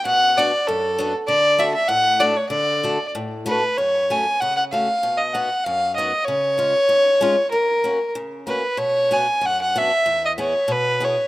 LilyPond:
<<
  \new Staff \with { instrumentName = "Fiddle" } { \time 2/4 \key d \major \tempo 4 = 96 fis''8 d''8 a'8. r16 | d''8 e''16 e''16 fis''8 d''16 cis''16 | d''4 r8 b'8 | \key b \dorian cis''8 gis''8 fis''16 fis''16 eis''8~ |
eis''16 dis''16 fis''8 eis''8 dis''8 | cis''2 | ais'4 r8 b'8 | cis''8 gis''8 fis''16 fis''16 e''8~ |
e''16 dis''16 cis''8 b'8 cis''8 | }
  \new Staff \with { instrumentName = "Steel-string acoustic guitar" } { \time 2/4 \key d \major << { r8 <b d' fis'>8 r8 <b d' fis'>8 | r8 <a d' fis'>8 r8 <a d' fis'>8 | r8 <a d' fis'>8 r8 <a d' fis'>8 | \key b \dorian r8 <a cis' fis'>8 r8 <a cis' fis'>8 |
r8 <b dis' fis'>8 r8 <b dis' fis'>8 | r8 <gis cis' eis'>8 r8 <gis cis' eis'>8 | r8 <ais cis' fis'>8 r8 <ais cis' fis'>8 | r8 <b d' fis'>8 r8 <b d' fis'>8 |
r8 <b e' gis'>8 r8 <b e' gis'>8 | } \\ { b,4 fis,4 | d4 a,4 | d4 a,4 | fis,4 cis4 |
b,4 fis,4 | cis4 gis,4 | fis,4 cis4 | b,4 fis,4 |
e,4 b,4 | } >> }
>>